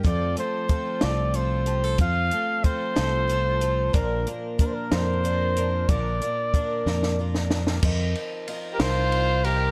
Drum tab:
CC |------------|------------|------------|------------|
RD |------------|------------|------------|------------|
HH |x-x-x-x-x-x-|x-x-x-x-x-x-|x-x-x-x-x-x-|x-x-x-------|
SD |------o-----|------o-----|------o-----|------oo-ooo|
BD |o---o-------|o---o-------|o---o-------|o---o-------|

CC |x-----------|
RD |--x-x-x-x-x-|
HH |------------|
SD |------o-----|
BD |o-----------|